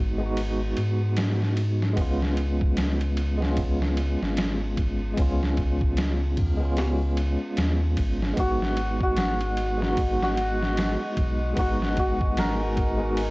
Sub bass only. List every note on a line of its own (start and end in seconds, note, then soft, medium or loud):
0.00 0.74 G#1 medium
0.77 1.99 G#2 medium
1.97 4.16 C#2 medium
4.22 5.14 G#1 medium
5.18 7.37 C#2 medium
7.57 7.99 D#2 loud
7.97 8.33 G#1 medium
8.37 10.96 G#1 medium
11.17 11.53 B1 medium
11.57 13.30 G#1 medium